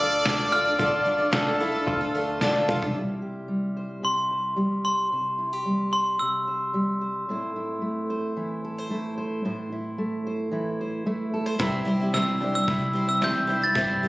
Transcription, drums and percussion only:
0.26 snare
0.79 kick
1.33 snare
1.87 kick
2.41 snare
2.69 mid tom
2.82 floor tom
11.60 kick, snare
12.14 snare
12.68 kick, snare
13.22 snare
13.75 kick, snare

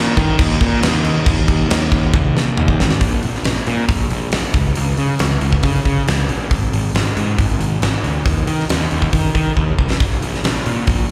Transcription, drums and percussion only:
0.17 kick, crash
0.39 kick, crash
0.61 kick, crash
0.83 snare, crash
1.04 crash
1.26 kick, crash
1.48 kick, crash
1.70 snare, crash
1.92 kick, crash
2.14 kick, high tom
2.37 snare
2.57 mid tom
2.68 kick
2.80 snare
2.91 snare
3.01 kick, open hi-hat
3.23 open hi-hat
3.35 snare
3.45 snare, open hi-hat
3.67 open hi-hat
3.89 kick, open hi-hat
4.10 open hi-hat
4.32 snare, open hi-hat
4.54 kick, open hi-hat
4.75 open hi-hat
4.97 open hi-hat
5.19 snare, open hi-hat
5.41 open hi-hat
5.53 kick
5.63 kick, open hi-hat
5.85 kick, open hi-hat
6.08 snare, open hi-hat
6.29 open hi-hat
6.51 kick, open hi-hat
6.73 open hi-hat
6.95 snare, open hi-hat
7.17 open hi-hat
7.38 kick, open hi-hat
7.61 open hi-hat
7.82 snare, open hi-hat
8.04 open hi-hat
8.26 kick, open hi-hat
8.47 open hi-hat
8.59 snare
8.69 snare, open hi-hat
8.91 open hi-hat
9.02 kick
9.13 kick, open hi-hat
9.35 kick, open hi-hat
9.57 kick
9.79 kick
9.91 snare
10.00 kick, open hi-hat
10.22 open hi-hat
10.34 snare
10.44 snare, open hi-hat
10.66 open hi-hat
10.87 kick, open hi-hat

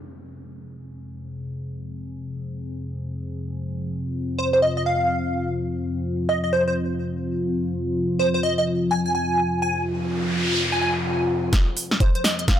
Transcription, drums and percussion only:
11.53 kick, snare, closed hi-hat
11.77 open hi-hat
11.91 snare
12.00 kick, closed hi-hat
12.15 closed hi-hat
12.24 snare, open hi-hat
12.39 closed hi-hat
12.48 kick, snare, closed hi-hat

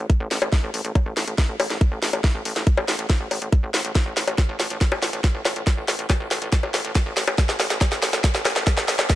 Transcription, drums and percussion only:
0.10 kick, closed hi-hat
0.31 snare, open hi-hat
0.42 closed hi-hat, high bongo
0.53 kick, snare, closed hi-hat
0.74 open hi-hat
0.85 closed hi-hat
0.95 kick, closed hi-hat, high bongo
1.17 snare, open hi-hat
1.28 closed hi-hat
1.38 kick, snare, closed hi-hat
1.60 open hi-hat, high bongo
1.70 snare, closed hi-hat
1.81 kick, closed hi-hat
2.03 snare, open hi-hat
2.13 closed hi-hat, high bongo
2.24 kick, snare, closed hi-hat
2.45 open hi-hat
2.56 snare, closed hi-hat
2.67 kick, closed hi-hat
2.77 high bongo
2.88 snare, open hi-hat
2.99 closed hi-hat
3.10 kick, snare, closed hi-hat
3.31 open hi-hat, high bongo
3.42 closed hi-hat
3.52 kick, closed hi-hat
3.74 snare, open hi-hat
3.85 closed hi-hat
3.95 kick, snare, closed hi-hat
4.17 snare, open hi-hat
4.28 closed hi-hat, high bongo
4.38 kick, snare, closed hi-hat
4.60 snare, open hi-hat
4.70 closed hi-hat
4.81 kick, snare, closed hi-hat
4.92 high bongo
5.03 snare, open hi-hat
5.13 closed hi-hat
5.24 kick, snare, closed hi-hat
5.45 snare, open hi-hat, high bongo
5.56 closed hi-hat
5.67 kick, snare, closed hi-hat
5.88 snare, open hi-hat
5.99 closed hi-hat
6.10 kick, snare, closed hi-hat, high bongo
6.31 snare, open hi-hat
6.42 closed hi-hat
6.53 kick, snare, closed hi-hat
6.63 high bongo
6.74 snare, open hi-hat
6.85 closed hi-hat
6.95 kick, snare, closed hi-hat
7.17 snare, open hi-hat
7.28 closed hi-hat, high bongo
7.38 kick, snare, closed hi-hat
7.49 snare
7.60 snare, open hi-hat
7.70 snare, closed hi-hat
7.81 kick, snare, closed hi-hat, high bongo
7.92 snare
8.03 snare, open hi-hat
8.13 snare, closed hi-hat
8.24 kick, snare, closed hi-hat
8.35 snare
8.45 snare, open hi-hat, high bongo
8.56 snare, closed hi-hat
8.67 kick, snare, closed hi-hat
8.77 snare
8.88 snare, open hi-hat
8.99 snare, closed hi-hat, high bongo
9.10 kick, snare, closed hi-hat

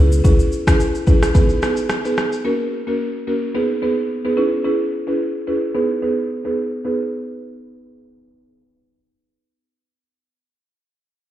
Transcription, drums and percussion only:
0.12 shaker
0.25 kick, shaker
0.39 shaker
0.52 shaker
0.67 kick, cross-stick, shaker
0.80 shaker
0.95 shaker
1.07 kick, shaker
1.23 cross-stick, shaker
1.35 kick, shaker
1.49 shaker
1.62 cross-stick, shaker
1.77 shaker
1.89 cross-stick, shaker
2.05 shaker
2.17 cross-stick, shaker
2.32 shaker

